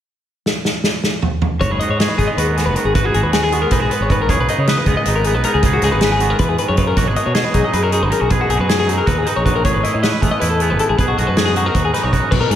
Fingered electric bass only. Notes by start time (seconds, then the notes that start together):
1.61 G#1
1.70 F#1
1.89 G#2
2.19 G#1
2.37 D#2
2.66 F#1
2.85 G#1
3.15 G#1
3.23 D#2
3.71 B1
4.00 G#1
4.29 C#2
4.39 B1
4.58 C#3
4.87 C#2
5.06 G#1
5.35 B1
5.54 C#2
5.83 C#2
5.92 G#1
6.39 E2
6.69 F#2
6.97 B1
7.08 G#1
7.26 B2
7.55 B1
7.73 F#2
8.03 G#1
8.21 B1
8.49 B1
8.59 F#2
9.07 D#2
9.37 A#1
9.65 A1
9.76 G#1
9.95 A2
10.22 A1
10.42 E2
10.71 G#1
10.90 A1
10.99 B1
11.18 B1
11.28 F#2
11.75 D#2
12.04 B1
12.32 B1
12.41 B2
12.50 G#2